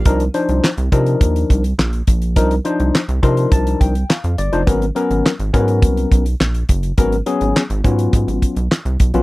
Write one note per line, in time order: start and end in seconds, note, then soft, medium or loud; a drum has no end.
0.05 0.29 C2 loud
0.05 0.23 F3 medium
0.05 0.23 D4 medium
0.05 0.23 D#4 medium
0.05 0.23 A#4 medium
0.05 kick loud
0.05 closed hi-hat medium
0.20 closed hi-hat soft
0.34 0.69 F3 medium
0.34 0.69 D4 medium
0.34 0.69 D#4 medium
0.34 0.69 C5 medium
0.34 closed hi-hat medium
0.49 0.61 C2 medium
0.49 closed hi-hat soft
0.64 snare medium
0.64 clap medium
0.78 0.89 C2 medium
0.78 closed hi-hat soft
0.92 1.16 C3 loud
0.92 1.62 F3 medium
0.92 1.62 D4 medium
0.92 1.62 D#4 medium
0.92 1.62 A#4 medium
0.92 kick medium
0.92 closed hi-hat medium
1.06 closed hi-hat soft
1.21 1.44 D#2 medium
1.21 kick loud
1.21 closed hi-hat medium
1.36 closed hi-hat soft
1.50 1.73 C2 medium
1.50 kick medium
1.50 closed hi-hat medium
1.64 closed hi-hat medium
1.79 2.02 A#1 loud
1.79 snare loud
1.79 clap medium
1.93 closed hi-hat soft
2.07 2.38 A#1 medium
2.07 kick medium
2.07 closed hi-hat medium
2.22 closed hi-hat medium
2.36 2.60 C2 loud
2.36 2.54 F3 medium
2.36 2.54 D4 medium
2.36 2.54 D#4 medium
2.36 2.54 A#4 medium
2.36 kick loud
2.36 closed hi-hat medium
2.51 closed hi-hat medium
2.65 3.00 F3 medium
2.65 3.00 D4 medium
2.65 3.00 D#4 medium
2.65 3.00 C5 medium
2.65 closed hi-hat medium
2.80 2.91 C2 medium
2.80 closed hi-hat soft
2.95 snare loud
2.95 clap medium
3.09 3.20 C2 loud
3.09 closed hi-hat soft
3.22 3.46 C3 loud
3.22 3.92 F3 medium
3.22 3.93 D4 medium
3.22 3.93 D#4 medium
3.22 3.93 A#4 medium
3.22 3.50 C6 medium
3.22 kick medium
3.22 closed hi-hat medium
3.37 closed hi-hat soft
3.52 3.75 C2 medium
3.52 3.79 A5 medium
3.52 kick loud
3.52 closed hi-hat medium
3.67 closed hi-hat medium
3.81 4.04 C2 medium
3.81 4.07 G5 medium
3.81 kick medium
3.81 closed hi-hat medium
3.95 closed hi-hat soft
4.10 4.36 F5 medium
4.10 snare loud
4.10 clap medium
4.24 4.36 F2 medium
4.24 closed hi-hat soft
4.38 4.50 G1 medium
4.38 4.65 D5 medium
4.38 closed hi-hat medium
4.52 4.65 F1 medium
4.52 4.61 F3 medium
4.52 4.61 D4 medium
4.52 4.61 D#4 medium
4.52 4.62 C5 medium
4.52 closed hi-hat soft
4.67 4.91 G#1 loud
4.67 4.84 F#3 medium
4.67 4.84 B3 medium
4.67 4.85 C#4 medium
4.67 4.85 A#4 medium
4.67 kick loud
4.67 closed hi-hat medium
4.82 closed hi-hat soft
4.95 5.31 F#3 medium
4.95 5.31 B3 medium
4.95 5.31 C#4 medium
4.95 5.31 A#4 medium
4.95 closed hi-hat medium
5.10 5.22 G#1 medium
5.10 closed hi-hat soft
5.26 snare loud
5.26 clap medium
5.39 5.51 G#1 loud
5.39 closed hi-hat medium
5.53 5.84 G#2 loud
5.53 6.23 F#3 medium
5.53 6.23 B3 medium
5.53 6.24 C#4 medium
5.53 6.24 A#4 medium
5.53 kick medium
5.53 closed hi-hat medium
5.68 closed hi-hat medium
5.82 6.06 C2 medium
5.82 kick loud
5.82 closed hi-hat medium
5.97 closed hi-hat soft
6.12 6.35 B1 medium
6.12 kick medium
6.12 closed hi-hat medium
6.26 closed hi-hat medium
6.40 6.64 A#1 medium
6.40 snare loud
6.40 clap medium
6.54 closed hi-hat soft
6.69 6.93 F#1 medium
6.69 kick medium
6.69 closed hi-hat medium
6.83 closed hi-hat medium
6.97 7.21 G#1 loud
6.97 7.15 F#3 medium
6.97 7.15 B3 medium
6.97 7.15 C#4 medium
6.97 7.16 A#4 medium
6.97 kick loud
6.97 closed hi-hat medium
7.12 closed hi-hat soft
7.26 7.61 F#3 medium
7.26 7.62 B3 medium
7.26 7.62 C#4 medium
7.26 7.62 G#4 medium
7.26 closed hi-hat medium
7.41 7.53 G#1 medium
7.41 closed hi-hat soft
7.56 snare medium
7.56 clap medium
7.70 7.82 G#1 loud
7.70 closed hi-hat soft
7.84 8.08 G#2 medium
7.84 8.54 F#3 medium
7.84 8.54 B3 medium
7.84 8.54 C#4 medium
7.84 8.54 F4 medium
7.84 kick loud
7.84 closed hi-hat medium
7.99 closed hi-hat medium
8.13 8.25 G#2 medium
8.13 kick loud
8.13 closed hi-hat medium
8.27 8.39 G#1 medium
8.27 closed hi-hat medium
8.42 kick medium
8.42 closed hi-hat medium
8.56 8.68 B1 medium
8.56 closed hi-hat soft
8.72 snare loud
8.72 clap medium
8.85 8.97 C2 loud
8.85 closed hi-hat soft
9.00 9.12 B1 medium
9.00 kick medium
9.00 closed hi-hat medium
9.14 9.23 A#1 medium
9.14 9.23 F#3 medium
9.14 9.23 B3 medium
9.14 9.23 C#4 medium
9.14 9.23 F4 medium
9.14 closed hi-hat soft